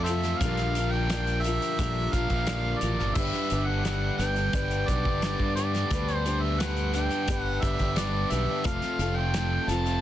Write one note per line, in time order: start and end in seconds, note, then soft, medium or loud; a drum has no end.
0.00 0.33 F2 medium
0.00 0.39 F3 loud
0.00 0.10 A4 medium
0.00 0.12 C5 medium
0.00 0.40 E5 loud
0.06 0.38 A3 medium
0.06 0.25 C4 medium
0.06 0.23 F4 medium
0.06 0.22 A4 medium
0.06 closed hi-hat medium
0.06 shaker medium
0.23 0.40 C4 medium
0.23 0.39 F4 medium
0.23 0.38 A4 medium
0.23 snare soft
0.23 closed hi-hat medium
0.39 1.58 A#1 loud
0.39 1.07 A#2 loud
0.39 1.08 D3 medium
0.39 0.73 F3 loud
0.39 0.74 A#3 medium
0.39 0.75 D4 medium
0.39 0.93 F5 loud
0.39 kick loud
0.39 closed hi-hat loud
0.39 shaker medium
0.43 0.77 G3 medium
0.43 0.77 F4 medium
0.43 0.76 A#4 loud
0.57 snare soft
0.57 closed hi-hat medium
0.74 0.94 F3 medium
0.74 0.93 A#3 medium
0.74 0.93 D4 medium
0.74 1.11 F4 medium
0.74 0.91 A#4 medium
0.74 closed hi-hat medium
0.74 shaker medium
0.80 1.11 G3 medium
0.91 1.08 F3 medium
0.91 1.09 A#3 medium
0.91 1.10 D4 medium
0.91 1.10 A#4 medium
0.91 1.44 G5 loud
1.08 1.78 A#2 medium
1.08 1.78 D3 medium
1.08 1.41 F3 medium
1.08 1.42 A#3 loud
1.08 1.44 D4 loud
1.08 1.44 A#4 loud
1.08 snare loud
1.08 closed hi-hat medium
1.08 shaker medium
1.13 1.46 G3 medium
1.13 1.46 F4 medium
1.27 closed hi-hat medium
1.42 1.61 F3 medium
1.42 1.61 A#3 medium
1.42 1.60 D4 medium
1.42 1.59 A#4 loud
1.42 2.14 E5 loud
1.42 closed hi-hat medium
1.42 shaker medium
1.48 1.79 G3 soft
1.48 1.79 D4 soft
1.48 1.80 F4 soft
1.60 1.77 F3 medium
1.60 1.77 A#3 medium
1.60 1.79 D4 medium
1.60 1.80 A#4 medium
1.60 closed hi-hat medium
1.78 2.08 A#1 loud
1.78 2.14 A#2 medium
1.78 2.14 D3 loud
1.78 2.11 F3 medium
1.78 2.14 G3 medium
1.78 2.13 A#3 medium
1.78 2.14 D4 medium
1.78 2.13 F4 loud
1.78 2.14 A#4 medium
1.78 kick loud
1.78 closed hi-hat loud
1.78 shaker loud
2.13 2.28 A#1 medium
2.13 2.32 F3 medium
2.13 2.46 G3 soft
2.13 2.31 A#3 medium
2.13 2.30 D4 medium
2.13 2.47 F4 medium
2.13 2.29 A#4 medium
2.13 2.81 F5 loud
2.13 kick medium
2.13 closed hi-hat medium
2.13 shaker medium
2.30 2.74 A#1 medium
2.30 2.47 F3 medium
2.30 2.47 A#3 medium
2.30 2.49 D4 medium
2.30 2.48 A#4 medium
2.30 kick medium
2.30 closed hi-hat soft
2.46 3.14 A#2 medium
2.46 3.14 D3 medium
2.46 2.80 F3 loud
2.46 2.82 G3 medium
2.46 2.81 A#3 loud
2.46 2.83 D4 medium
2.46 2.82 F4 medium
2.46 2.83 A#4 loud
2.46 snare loud
2.46 closed hi-hat loud
2.46 shaker loud
2.79 2.97 A1 medium
2.79 3.01 F3 medium
2.79 3.00 A#3 medium
2.79 2.99 D4 medium
2.79 3.17 F4 soft
2.79 3.16 D5 medium
2.79 closed hi-hat medium
2.79 shaker medium
2.84 3.15 G3 soft
2.84 2.98 A#4 medium
2.99 3.15 G1 medium
2.99 3.15 F3 medium
2.99 3.15 A#3 medium
2.99 3.19 D4 medium
2.99 3.14 A#4 medium
2.99 snare soft
3.15 3.30 G1 loud
3.15 3.84 G2 medium
3.15 3.84 D3 medium
3.15 3.50 G3 medium
3.15 3.50 B4 medium
3.15 3.68 E5 loud
3.15 kick loud
3.15 crash loud
3.15 shaker loud
3.19 3.52 B3 loud
3.19 3.52 D4 loud
3.19 3.53 G4 loud
3.33 snare soft
3.33 closed hi-hat soft
3.50 4.09 G1 loud
3.50 3.70 G3 medium
3.50 3.70 B3 medium
3.50 3.69 D4 medium
3.50 3.68 G4 medium
3.50 3.85 B4 medium
3.50 closed hi-hat medium
3.50 shaker medium
3.66 3.86 D4 medium
3.66 3.87 G4 medium
3.66 4.17 F#5 loud
3.70 3.86 G3 medium
3.70 3.86 B3 medium
3.84 5.22 G2 medium
3.84 4.54 D3 medium
3.84 4.20 G3 loud
3.84 4.21 B3 medium
3.84 4.22 D4 loud
3.84 4.23 G4 loud
3.84 4.18 B4 medium
3.84 snare loud
3.84 closed hi-hat loud
3.84 shaker medium
4.18 4.48 G1 loud
4.18 4.39 G3 medium
4.18 4.38 B3 medium
4.18 4.54 B4 medium
4.18 4.89 G5 loud
4.18 snare soft
4.18 closed hi-hat medium
4.18 shaker medium
4.22 4.37 D4 medium
4.22 4.35 G4 medium
4.36 4.53 G3 medium
4.36 4.54 B3 medium
4.36 4.55 D4 medium
4.36 4.56 G4 medium
4.36 closed hi-hat soft
4.53 4.83 G1 loud
4.53 4.87 G3 medium
4.53 4.89 B3 medium
4.53 4.89 D4 medium
4.53 4.88 B4 medium
4.53 kick loud
4.53 closed hi-hat loud
4.53 shaker loud
4.57 4.90 G4 loud
4.71 closed hi-hat medium
4.87 5.07 B1 loud
4.87 5.07 G3 medium
4.87 5.06 B3 medium
4.87 5.05 D4 medium
4.87 5.23 B4 medium
4.87 5.55 D5 loud
4.87 kick medium
4.87 closed hi-hat medium
4.87 shaker medium
4.91 5.04 G4 medium
5.05 5.34 G1 medium
5.05 5.22 G3 medium
5.05 5.23 B3 medium
5.05 5.24 D4 medium
5.05 5.24 G4 medium
5.05 kick medium
5.22 5.90 G2 medium
5.22 5.91 D3 loud
5.22 5.55 G3 medium
5.22 5.57 B3 medium
5.22 5.57 D4 loud
5.22 5.58 G4 loud
5.22 5.56 B4 medium
5.22 snare loud
5.22 closed hi-hat medium
5.22 shaker medium
5.39 5.83 G2 loud
5.39 kick medium
5.56 5.75 G3 medium
5.56 5.74 B3 medium
5.56 5.73 D4 medium
5.56 5.72 G4 medium
5.56 5.91 B4 medium
5.56 6.15 D5 loud
5.56 closed hi-hat medium
5.56 shaker medium
5.73 5.91 G3 medium
5.73 5.91 B3 medium
5.73 5.92 D4 medium
5.73 5.93 G4 medium
5.73 snare soft
5.73 closed hi-hat soft
5.91 7.08 D2 loud
5.91 6.59 G2 medium
5.91 6.60 D3 medium
5.91 6.24 G3 medium
5.91 6.25 B3 medium
5.91 6.27 D4 loud
5.91 6.28 G4 loud
5.91 6.25 B4 loud
5.91 kick loud
5.91 closed hi-hat loud
5.91 shaker medium
6.08 closed hi-hat medium
6.15 6.44 C5 loud
6.26 6.44 G3 medium
6.26 6.44 B3 medium
6.26 6.43 D4 medium
6.26 6.42 G4 medium
6.26 6.60 B4 medium
6.26 closed hi-hat medium
6.26 shaker medium
6.42 6.60 G3 medium
6.42 6.61 B3 medium
6.42 6.62 D4 medium
6.42 6.62 G4 medium
6.42 6.62 E5 medium
6.60 7.29 G2 loud
6.60 7.29 D3 loud
6.60 6.93 G3 loud
6.60 6.94 B3 loud
6.60 6.95 D4 loud
6.60 6.96 G4 loud
6.60 6.93 B4 medium
6.60 6.94 F#5 loud
6.60 snare loud
6.60 closed hi-hat loud
6.60 shaker medium
6.77 closed hi-hat soft
6.93 7.13 G3 medium
6.93 7.12 B3 medium
6.93 7.11 D4 medium
6.93 7.10 G4 medium
6.93 7.28 B4 medium
6.93 7.40 G5 loud
6.93 closed hi-hat medium
6.93 shaker medium
7.11 7.27 G3 medium
7.11 7.28 B3 medium
7.11 7.29 D4 medium
7.11 7.30 G4 medium
7.11 closed hi-hat medium
7.28 7.58 G1 loud
7.28 7.61 G3 medium
7.28 7.63 B3 medium
7.28 7.64 D4 medium
7.28 7.64 G4 medium
7.28 7.61 B4 loud
7.28 kick loud
7.28 closed hi-hat loud
7.28 shaker loud
7.40 7.63 F#5 loud
7.62 7.77 G1 loud
7.62 7.81 G3 medium
7.62 7.80 B3 medium
7.62 7.79 D4 medium
7.62 7.78 G4 medium
7.62 7.97 B4 medium
7.62 8.00 E5 loud
7.62 kick medium
7.62 closed hi-hat medium
7.62 shaker medium
7.79 8.24 G1 loud
7.79 7.97 G3 medium
7.79 7.97 B3 medium
7.79 7.98 D4 medium
7.79 7.98 G4 medium
7.79 kick medium
7.79 closed hi-hat medium
7.96 8.64 G2 medium
7.96 8.64 D3 loud
7.96 8.30 G3 loud
7.96 8.31 B3 loud
7.96 8.31 D4 loud
7.96 8.33 G4 loud
7.96 8.31 B4 medium
7.96 8.33 D5 medium
7.96 snare loud
7.96 closed hi-hat loud
7.96 shaker medium
8.30 8.46 B1 loud
8.30 8.50 G3 medium
8.30 8.49 B3 medium
8.30 8.48 D4 medium
8.30 8.47 G4 medium
8.30 8.66 B4 medium
8.30 8.65 E5 medium
8.30 closed hi-hat medium
8.30 shaker medium
8.48 8.65 G3 medium
8.48 8.65 B3 medium
8.48 8.64 D4 medium
8.48 8.64 G4 medium
8.64 8.80 F1 loud
8.64 9.32 F2 medium
8.64 9.33 C3 medium
8.64 8.98 F3 loud
8.64 9.00 A3 loud
8.64 9.00 C4 loud
8.64 9.00 A4 loud
8.64 9.18 F5 loud
8.64 kick loud
8.64 closed hi-hat loud
8.64 shaker medium
8.68 9.01 F4 loud
8.82 snare soft
8.82 closed hi-hat medium
8.99 9.58 F1 loud
8.99 9.19 F3 medium
8.99 9.18 A3 medium
8.99 9.17 C4 medium
8.99 9.35 A4 medium
8.99 closed hi-hat medium
8.99 shaker medium
9.03 9.16 F4 loud
9.17 9.33 F3 medium
9.17 9.34 A3 medium
9.17 9.35 C4 medium
9.17 9.35 F4 medium
9.17 9.71 G5 loud
9.34 10.01 F2 loud
9.34 10.01 C3 loud
9.34 9.66 F3 loud
9.34 9.67 A3 loud
9.34 9.68 C4 loud
9.34 9.69 F4 loud
9.34 9.68 A4 medium
9.34 snare loud
9.34 closed hi-hat loud
9.34 shaker medium
9.67 9.97 F1 loud
9.67 9.87 F3 medium
9.67 9.86 A3 medium
9.67 9.85 C4 medium
9.67 9.83 F4 medium
9.67 10.01 A4 soft
9.67 10.01 A5 loud
9.67 snare soft
9.67 closed hi-hat medium
9.67 shaker medium
9.85 10.01 F3 medium
9.85 10.01 A3 medium
9.85 10.01 C4 medium
9.85 10.01 F4 medium
9.85 closed hi-hat soft